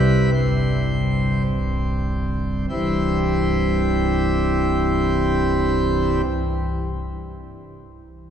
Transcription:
pipe organ
Already playing: C2 C3 G3 E4 B4
0.34 G1 G2 C5
1.46 C1 C2
2.69 C1 C2 G2 E3 G3 C4 E4

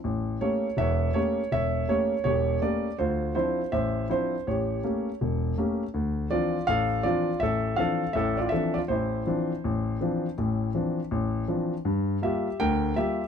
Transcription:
grand piano
0.04 A1
0.41 A3 A#3 C#4 G4 C#5
0.77 E1 E2 C#5 E5
1.14 A3 A#3 C#4 G4 C#5
1.52 E1 C#5 E5
1.88 A3 A#3 C#4 G4 C#5
2.24 E1 G4 C#5
2.62 A3 A#3 C#4 G4 D5
2.99 D2 F4 C5
3.35 F3 C4 D4 E4 C5
3.72 A1 C5 E5
4.09 F3 C4 D4 E4 C5
4.47 A1 G4 C#5
4.84 A3 A#3 C#4 G4
5.21 E1
5.58 A3 A#3 C#4 G4
5.94 D2
6.30 E3 F3 C4 D4 F4 D5
6.67 A1 A4 F5
7.03 E3 F3 C4 D4 F4 D5
7.40 A1 A4 E5
7.76 E3 F3 C4 D4 A4 F5
8.13 A1 A2 A4 E5
8.37 F4 D5
8.49 E3 F3 A4 E5
8.53 C4 D4
8.74 F4 D5
8.88 A1 E4 C5
9.27 E3 F3 C4 D4
9.64 A1
10.01 E3 F3 C4 D4
10.38 A1 A2
10.75 E3 F3 C4 D4
11.11 A1
11.48 E3 F3 C4 D4
11.85 G2
12.22 G3 A#3 F4 G4 E5
12.60 D2 D3 A#4 G5
12.96 G3 A#3 F4 G4 E5

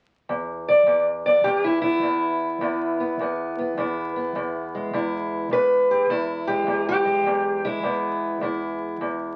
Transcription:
steel-string acoustic guitar
0.29 E2
0.69 D5
0.86 E2
1.26 B3 D5
1.44 E2 G4
1.64 E4
1.82 B3 E4
2.02 E2
2.61 E2 B3
3.00 B3
3.20 E2 B3
3.59 B3
3.78 E2 E4
4.16 B3
4.36 E2
4.75 G#3
4.93 E2 E4
5.51 E2 B4
5.91 G4
6.10 E2 E4
6.47 G#3 G4
6.67 E2
6.89 G4
7.05 G#3
7.26 E2
7.65 G#3 E4
7.83 E2 B3
8.41 E2 E4
9.01 E2

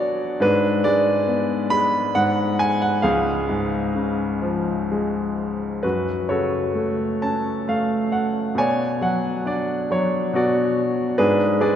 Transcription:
grand piano
Already playing: B2 F#3 B3 D4 F#4 C#5 D5 F#5
0.40 G#2 D4 B4
0.84 G#3 D5
1.27 B3
1.70 G#3 B5
2.15 G#2 F#5
2.59 G#5
2.82 F#5
3.02 C#2 G#4 F5
3.49 G#2
3.95 C#3
4.42 F3
4.92 G#3
5.83 F#2 F#4 B4
6.29 C#3 F#4 A4 C#5
6.75 A3
7.22 C#4 A5
7.68 A3 F5
8.12 F#5
8.55 B2 C#5 D5 G#5
9.01 F#3 F#5
9.45 D4 D5
9.90 F#3 C#5
10.33 B2 F#4 D5
11.18 G#2 D4 G#4 B4
11.61 G#3 G#4 B4 D5

